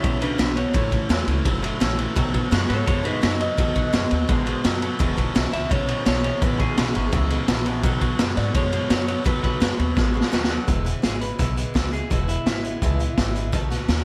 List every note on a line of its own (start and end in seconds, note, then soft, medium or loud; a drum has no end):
0.03 0.28 B1 medium
0.03 0.20 E2 medium
0.03 0.20 C#3 loud
0.03 0.21 E3 medium
0.03 0.22 G#3 medium
0.03 0.21 B3 medium
0.03 0.20 E4 medium
0.03 0.21 C#5 medium
0.03 kick loud
0.03 ride medium
0.21 0.37 E2 medium
0.21 0.37 C#3 medium
0.21 0.38 E3 soft
0.21 0.38 G#3 medium
0.21 0.39 B3 soft
0.21 0.38 D4 medium
0.21 0.39 E4 medium
0.21 0.38 B4 medium
0.21 ride medium
0.38 0.63 B1 medium
0.38 0.57 E2 medium
0.38 0.55 E2 medium
0.38 0.57 B2 medium
0.38 0.55 B2 medium
0.38 0.57 E3 medium
0.38 0.56 G#3 medium
0.38 0.55 B3 loud
0.38 0.56 D4 medium
0.38 0.54 E4 medium
0.38 0.57 B4 medium
0.38 snare loud
0.38 ride medium
0.55 0.73 E2 medium
0.55 0.73 B2 medium
0.55 0.73 E3 soft
0.55 0.74 G#3 soft
0.55 0.74 B3 soft
0.55 0.74 E4 medium
0.55 1.60 C#5 medium
0.55 ride medium
0.74 0.98 A1 loud
0.74 0.92 A2 medium
0.74 0.91 A2 medium
0.74 0.92 E3 medium
0.74 0.91 E3 medium
0.74 0.93 A3 medium
0.74 0.92 C#4 medium
0.74 0.90 E4 medium
0.74 kick loud
0.74 ride medium
0.91 1.08 A2 medium
0.91 1.08 E3 medium
0.91 1.09 A3 medium
0.91 1.10 C#4 medium
0.91 1.10 E4 medium
0.91 kick medium
0.91 ride medium
1.09 1.22 E2 medium
1.09 1.28 A2 medium
1.09 1.26 A2 medium
1.09 1.28 E3 medium
1.09 1.26 F#3 medium
1.09 1.28 A3 medium
1.09 1.28 C#4 loud
1.09 1.26 E4 loud
1.09 snare loud
1.09 ride medium
1.27 1.39 C#2 loud
1.27 1.44 A2 medium
1.27 1.44 E3 medium
1.27 1.45 A3 soft
1.27 1.46 C#4 medium
1.27 1.45 E4 medium
1.27 ride medium
1.45 1.69 F#1 medium
1.45 1.61 A2 loud
1.45 1.63 E3 medium
1.45 1.61 F#3 loud
1.45 1.64 A3 medium
1.45 1.63 C#4 medium
1.45 1.61 E4 medium
1.45 kick loud
1.45 ride medium
1.62 1.79 A2 medium
1.62 1.79 F#3 medium
1.62 1.80 A3 medium
1.62 1.81 C#4 medium
1.62 1.81 E4 medium
1.62 ride medium
1.80 2.05 A#1 medium
1.80 1.98 A2 loud
1.80 1.97 A2 medium
1.80 1.97 E3 loud
1.80 1.99 E3 medium
1.80 1.99 A3 medium
1.80 1.99 C#4 loud
1.80 1.97 E4 loud
1.80 snare loud
1.80 ride medium
1.98 2.15 A2 medium
1.98 2.15 E3 medium
1.98 2.16 A3 soft
1.98 2.17 C#4 medium
1.98 2.16 E4 medium
1.98 ride medium
2.16 2.40 B1 medium
2.16 2.34 B2 medium
2.16 2.32 B2 medium
2.16 2.34 D#3 medium
2.16 2.32 F#3 medium
2.16 2.35 A3 loud
2.16 2.34 B3 loud
2.16 2.33 F#4 medium
2.16 kick loud
2.16 ride medium
2.34 2.50 B2 medium
2.34 2.50 F#3 medium
2.34 2.51 A3 medium
2.34 2.52 B3 medium
2.34 2.52 F#4 medium
2.34 kick medium
2.34 ride medium
2.51 2.64 F#2 medium
2.51 2.69 B2 medium
2.51 2.68 B2 medium
2.51 2.70 D#3 medium
2.51 2.68 G#3 medium
2.51 2.70 A3 medium
2.51 2.69 B3 medium
2.51 2.67 F#4 loud
2.51 snare loud
2.51 ride medium
2.68 2.82 G#2 medium
2.68 2.86 B2 medium
2.68 2.86 F#3 medium
2.68 2.87 A3 soft
2.68 2.87 B3 soft
2.68 2.87 F#4 medium
2.68 2.85 A4 medium
2.68 2.86 C#5 loud
2.68 snare soft
2.68 ride medium
2.86 3.11 F#2 loud
2.86 3.04 B2 medium
2.86 3.05 D#3 medium
2.86 3.04 G#3 medium
2.86 3.05 A3 medium
2.86 3.04 B3 medium
2.86 3.02 F#4 medium
2.86 3.03 A4 medium
2.86 3.05 C#5 loud
2.86 kick loud
2.86 ride medium
3.03 3.21 B2 medium
3.03 3.22 G#3 medium
3.03 3.22 A3 soft
3.03 3.22 B3 medium
3.03 3.21 D#4 medium
3.03 3.22 F#4 medium
3.03 3.22 B4 medium
3.03 ride medium
3.22 3.47 F#2 medium
3.22 3.40 B2 medium
3.22 3.39 B2 medium
3.22 3.40 D#3 medium
3.22 3.39 F#3 medium
3.22 3.41 A3 medium
3.22 3.39 B3 medium
3.22 3.39 D#4 medium
3.22 3.38 F#4 medium
3.22 3.40 B4 medium
3.22 snare loud
3.22 ride medium
3.39 3.56 B2 medium
3.39 3.57 F#3 medium
3.39 3.57 A3 soft
3.39 3.57 B3 medium
3.39 3.58 F#4 medium
3.39 4.44 D#5 loud
3.39 ride medium
3.57 3.82 E2 loud
3.57 3.76 B2 medium
3.57 3.74 B2 medium
3.57 3.76 D#3 medium
3.57 3.74 F#3 medium
3.57 3.76 A3 medium
3.57 3.75 B3 medium
3.57 3.74 F#4 medium
3.57 kick loud
3.57 ride medium
3.75 3.92 B2 medium
3.75 3.92 F#3 medium
3.75 3.93 A3 soft
3.75 3.93 B3 medium
3.75 3.93 F#4 medium
3.75 kick medium
3.75 ride medium
3.93 4.06 F#2 loud
3.93 4.11 B2 loud
3.93 4.09 B2 medium
3.93 4.11 D#3 medium
3.93 4.10 G#3 loud
3.93 4.12 A3 loud
3.93 4.11 B3 loud
3.93 4.09 F#4 medium
3.93 snare loud
3.93 ride medium
4.10 4.23 D#2 medium
4.10 4.27 B2 medium
4.10 4.27 F#3 medium
4.10 4.28 A3 medium
4.10 4.29 B3 medium
4.10 4.29 F#4 medium
4.10 ride medium
4.28 4.53 A1 loud
4.28 4.45 B2 medium
4.28 4.46 D#3 medium
4.28 4.45 G#3 loud
4.28 4.47 A3 medium
4.28 4.46 B3 medium
4.28 4.45 F#4 medium
4.28 kick loud
4.28 ride medium
4.46 4.63 B2 medium
4.46 4.63 G#3 medium
4.46 4.64 A3 soft
4.46 4.65 B3 medium
4.46 4.64 F#4 medium
4.46 ride medium
4.64 4.88 F#2 medium
4.64 4.82 B2 loud
4.64 4.81 B2 medium
4.64 4.82 D#3 medium
4.64 4.81 F#3 medium
4.64 4.83 A3 loud
4.64 4.82 B3 loud
4.64 4.80 F#4 loud
4.64 snare loud
4.64 ride medium
4.81 4.98 B2 medium
4.81 4.99 F#3 medium
4.81 5.00 A3 medium
4.81 4.99 B3 medium
4.81 4.99 F#4 medium
4.81 ride medium
4.99 5.24 E1 loud
4.99 5.17 E2 medium
4.99 5.16 E2 medium
4.99 5.17 B2 loud
4.99 5.16 B2 loud
4.99 5.18 E3 medium
4.99 5.18 G#3 medium
4.99 5.16 B3 medium
4.99 5.16 E4 medium
4.99 kick loud
4.99 ride medium
5.17 5.34 E2 medium
5.17 5.34 B2 medium
5.17 5.34 E3 medium
5.17 5.35 G#3 medium
5.17 5.35 B3 medium
5.17 5.35 E4 medium
5.17 kick medium
5.17 ride medium
5.35 5.47 B1 loud
5.35 5.53 E2 medium
5.35 5.51 E2 medium
5.35 5.53 B2 medium
5.35 5.52 C#3 medium
5.35 5.53 E3 medium
5.35 5.53 G#3 loud
5.35 5.52 B3 medium
5.35 5.51 E4 medium
5.35 snare loud
5.35 ride medium
5.52 5.65 C#2 medium
5.52 5.69 E2 medium
5.52 5.69 B2 medium
5.52 5.68 E3 soft
5.52 5.70 G#3 soft
5.52 5.71 B3 soft
5.52 5.70 E4 medium
5.52 5.70 E5 loud
5.52 snare soft
5.52 ride medium
5.70 5.94 B1 medium
5.70 5.86 E2 medium
5.70 5.87 C#3 medium
5.70 5.88 E3 medium
5.70 5.89 G#3 medium
5.70 5.88 B3 medium
5.70 5.86 E4 medium
5.70 6.05 C#5 medium
5.70 kick loud
5.70 ride medium
5.88 6.04 E2 medium
5.88 6.05 C#3 medium
5.88 6.05 E3 medium
5.88 6.06 G#3 soft
5.88 6.06 B3 soft
5.88 6.06 E4 medium
5.88 ride medium
6.06 6.30 B1 loud
6.06 6.24 E2 medium
6.06 6.22 E2 medium
6.06 6.24 B2 medium
6.06 6.22 B2 medium
6.06 6.24 E3 medium
6.06 6.24 G#3 medium
6.06 6.24 B3 medium
6.06 6.23 E4 medium
6.06 6.22 C#5 medium
6.06 snare loud
6.06 ride medium
6.24 6.40 E2 medium
6.24 6.40 B2 medium
6.24 6.42 E3 soft
6.24 6.42 G#3 medium
6.24 6.42 B3 medium
6.24 6.42 E4 medium
6.24 6.42 C#5 loud
6.24 ride medium
6.42 6.65 A1 medium
6.42 6.58 E2 medium
6.42 6.60 E2 medium
6.42 6.58 B2 loud
6.42 6.60 B2 medium
6.42 6.60 E3 medium
6.42 6.60 G#3 medium
6.42 6.59 B3 medium
6.42 6.58 E4 medium
6.42 6.59 B4 loud
6.42 kick loud
6.42 ride medium
6.59 6.75 E2 medium
6.59 6.75 B2 medium
6.59 6.77 E3 soft
6.59 6.78 G#3 soft
6.59 6.78 B3 medium
6.59 6.77 E4 medium
6.59 7.29 G#4 loud
6.59 kick medium
6.59 ride medium
6.77 6.89 B1 loud
6.77 6.93 E2 medium
6.77 6.95 E2 medium
6.77 6.95 B2 medium
6.77 6.94 C#3 medium
6.77 6.95 E3 medium
6.77 6.95 G#3 medium
6.77 6.95 B3 medium
6.77 6.93 E4 loud
6.77 snare loud
6.77 ride medium
6.94 7.07 G#1 loud
6.94 7.11 E2 medium
6.94 7.11 B2 medium
6.94 7.11 E3 soft
6.94 7.11 G#3 soft
6.94 7.12 B3 medium
6.94 7.12 E4 medium
6.94 ride medium
7.12 7.36 C#2 medium
7.12 7.29 E2 loud
7.12 7.29 C#3 loud
7.12 7.30 E3 medium
7.12 7.30 G#3 medium
7.12 7.30 B3 medium
7.12 7.29 E4 medium
7.12 kick loud
7.12 ride medium
7.30 7.46 E2 medium
7.30 7.47 C#3 medium
7.30 7.48 E3 medium
7.30 7.48 G#3 medium
7.30 7.49 B3 medium
7.30 7.48 E4 medium
7.30 ride medium
7.48 7.84 A#1 medium
7.48 7.64 E2 medium
7.48 7.66 E2 loud
7.48 7.64 B2 medium
7.48 7.66 B2 medium
7.48 7.66 E3 loud
7.48 7.66 G#3 medium
7.48 7.65 B3 loud
7.48 7.64 E4 loud
7.48 snare loud
7.48 ride medium
7.65 7.82 E2 medium
7.65 7.82 B2 loud
7.65 7.84 E3 soft
7.65 7.84 G#3 medium
7.65 7.84 B3 medium
7.65 7.83 E4 medium
7.65 ride medium
7.83 8.07 B1 loud
7.83 8.00 B2 medium
7.83 8.02 B2 medium
7.83 8.02 D#3 medium
7.83 8.00 F#3 loud
7.83 8.02 A3 loud
7.83 8.01 B3 loud
7.83 8.00 F#4 loud
7.83 kick loud
7.83 ride medium
8.01 8.17 B2 medium
8.01 8.18 F#3 medium
8.01 8.19 A3 medium
8.01 8.19 B3 medium
8.01 8.19 F#4 medium
8.01 kick medium
8.01 ride medium
8.19 8.31 F#2 loud
8.19 8.37 B2 loud
8.19 8.35 B2 medium
8.19 8.37 D#3 medium
8.19 8.35 G#3 medium
8.19 8.37 A3 loud
8.19 8.37 B3 loud
8.19 8.35 F#4 loud
8.19 snare loud
8.19 ride medium
8.36 8.49 G#2 loud
8.36 8.53 B2 medium
8.36 8.53 F#3 medium
8.36 8.55 A3 soft
8.36 8.55 B3 soft
8.36 8.54 F#4 medium
8.36 8.54 D5 loud
8.36 snare soft
8.36 ride medium
8.54 8.78 F#2 medium
8.54 8.71 B2 medium
8.54 8.72 D#3 medium
8.54 8.71 G#3 loud
8.54 8.73 A3 medium
8.54 8.73 B3 medium
8.54 8.71 F#4 medium
8.54 8.89 C#5 loud
8.54 kick loud
8.54 ride medium
8.72 8.89 B2 medium
8.72 8.89 G#3 medium
8.72 8.90 A3 soft
8.72 8.90 B3 soft
8.72 8.90 F#4 medium
8.72 ride medium
8.90 9.14 F#2 loud
8.90 9.08 B2 medium
8.90 9.06 B2 medium
8.90 9.08 D#3 medium
8.90 9.07 F#3 medium
8.90 9.08 A3 medium
8.90 9.07 B3 medium
8.90 9.06 F#4 loud
8.90 9.07 C#5 medium
8.90 snare loud
8.90 ride medium
9.07 9.24 B2 medium
9.07 9.24 F#3 medium
9.07 9.25 A3 soft
9.07 9.25 B3 medium
9.07 9.25 F#4 medium
9.07 9.25 C#5 medium
9.07 ride medium
9.24 9.49 E2 medium
9.24 9.43 B2 medium
9.24 9.42 B2 medium
9.24 9.43 D#3 medium
9.24 9.42 F#3 medium
9.24 9.44 A3 medium
9.24 9.44 B3 medium
9.24 9.41 F#4 medium
9.24 9.43 B4 loud
9.24 kick loud
9.24 ride medium
9.43 9.59 B2 medium
9.43 9.60 F#3 medium
9.43 9.60 A3 soft
9.43 9.61 B3 medium
9.43 9.61 F#4 medium
9.43 10.13 B4 loud
9.43 kick medium
9.43 ride medium
9.60 9.73 F#2 loud
9.60 9.79 B2 medium
9.60 9.77 B2 medium
9.60 9.79 D#3 medium
9.60 9.78 G#3 medium
9.60 9.79 A3 medium
9.60 9.78 B3 medium
9.60 9.76 F#4 medium
9.60 snare loud
9.60 ride medium
9.78 9.91 D#2 loud
9.78 9.95 B2 medium
9.78 9.95 F#3 medium
9.78 9.95 A3 soft
9.78 9.96 B3 medium
9.78 9.96 F#4 medium
9.78 ride medium
9.95 10.20 A1 medium
9.95 10.13 B2 loud
9.95 10.14 D#3 medium
9.95 10.13 G#3 loud
9.95 10.15 A3 medium
9.95 10.14 B3 medium
9.95 10.13 F#4 medium
9.95 kick loud
9.95 snare medium
10.14 10.31 B2 medium
10.14 10.31 G#3 medium
10.14 10.32 A3 medium
10.14 10.32 B3 medium
10.14 10.32 F#4 medium
10.21 snare medium
10.32 10.56 D#2 medium
10.32 10.50 B2 medium
10.32 10.49 B2 medium
10.32 10.50 D#3 loud
10.32 10.49 F#3 medium
10.32 10.51 A3 medium
10.32 10.50 B3 loud
10.32 10.47 F#4 loud
10.32 snare medium
10.44 snare loud
10.49 10.66 B2 medium
10.49 10.66 F#3 medium
10.49 10.68 A3 medium
10.49 10.68 B3 medium
10.49 10.67 F#4 medium
10.67 10.92 E1 medium
10.67 10.86 E2 medium
10.67 10.86 B2 medium
10.67 10.86 E3 medium
10.67 10.86 G#3 medium
10.67 10.85 B3 medium
10.67 10.83 E4 medium
10.67 kick loud
10.67 closed hi-hat medium
10.85 11.01 E3 soft
10.85 11.02 G#3 medium
10.85 11.04 B3 medium
10.85 11.03 E4 medium
10.85 closed hi-hat medium
11.02 11.28 G#1 medium
11.02 11.21 E3 medium
11.02 11.22 G#3 medium
11.02 11.21 B3 medium
11.02 11.19 E4 medium
11.02 11.21 G#4 medium
11.02 snare loud
11.02 closed hi-hat medium
11.20 11.38 E3 soft
11.20 11.39 G#3 soft
11.20 11.39 B3 soft
11.20 11.39 E4 soft
11.20 11.91 B4 medium
11.20 closed hi-hat medium
11.39 11.64 B1 medium
11.39 11.57 E2 medium
11.39 11.57 B2 medium
11.39 11.57 E3 medium
11.39 11.57 G#3 medium
11.39 11.56 B3 medium
11.39 11.55 E4 medium
11.39 kick loud
11.39 closed hi-hat medium
11.56 11.73 E3 soft
11.56 11.74 G#3 medium
11.56 11.75 B3 medium
11.56 11.75 E4 medium
11.56 closed hi-hat medium
11.74 11.99 C#2 medium
11.74 11.92 E3 medium
11.74 11.93 G#3 medium
11.74 11.92 B3 medium
11.74 11.91 E4 medium
11.74 kick medium
11.74 snare loud
11.74 closed hi-hat medium
11.92 12.11 E3 soft
11.92 12.11 G#3 soft
11.92 12.11 B3 medium
11.92 12.10 E4 medium
11.92 12.10 G#4 medium
11.92 closed hi-hat medium
12.10 12.35 E1 loud
12.10 12.28 E2 medium
12.10 12.29 B2 medium
12.10 12.29 E3 medium
12.10 12.29 G#3 medium
12.10 12.27 B3 medium
12.10 12.27 E4 medium
12.10 12.28 F#4 loud
12.10 kick loud
12.10 closed hi-hat medium
12.28 12.45 E3 soft
12.28 12.46 G#3 soft
12.28 12.46 B3 soft
12.28 12.46 E4 medium
12.28 12.45 E4 medium
12.28 closed hi-hat medium
12.46 12.70 G#1 medium
12.46 12.64 E3 medium
12.46 12.64 G#3 medium
12.46 12.64 B3 medium
12.46 13.50 E4 medium
12.46 12.62 E4 medium
12.46 snare loud
12.46 closed hi-hat medium
12.64 12.82 E3 soft
12.64 12.82 G#3 soft
12.64 12.82 B3 soft
12.64 12.82 E4 medium
12.64 closed hi-hat medium
12.82 13.06 C#2 medium
12.82 13.00 E2 medium
12.82 13.00 B2 medium
12.82 13.00 E3 medium
12.82 13.00 G#3 medium
12.82 12.99 B3 medium
12.82 12.98 E4 medium
12.82 kick loud
12.82 closed hi-hat medium
12.99 13.16 E3 medium
12.99 13.18 G#3 medium
12.99 13.18 B3 medium
12.99 13.17 E4 medium
12.99 closed hi-hat medium
13.18 13.53 G#1 medium
13.18 13.35 E3 medium
13.18 13.36 G#3 medium
13.18 13.35 B3 medium
13.18 13.34 E4 medium
13.18 kick medium
13.18 snare loud
13.18 closed hi-hat medium
13.35 13.53 E3 medium
13.35 13.53 G#3 medium
13.35 13.53 B3 medium
13.35 13.53 E4 medium
13.35 closed hi-hat medium
13.52 13.77 B1 medium
13.52 13.71 B2 medium
13.52 13.71 D#3 medium
13.52 13.71 A3 medium
13.52 13.71 B3 medium
13.52 13.69 F#4 medium
13.52 kick loud
13.52 closed hi-hat medium
13.70 13.88 A3 medium
13.70 13.89 B3 medium
13.70 13.88 F#4 medium
13.70 snare soft
13.70 closed hi-hat medium
13.88 14.04 D#2 medium
13.88 14.04 D#3 medium
13.88 14.04 A3 medium
13.88 14.04 B3 medium
13.88 14.04 F#4 medium
13.88 snare loud
13.88 closed hi-hat medium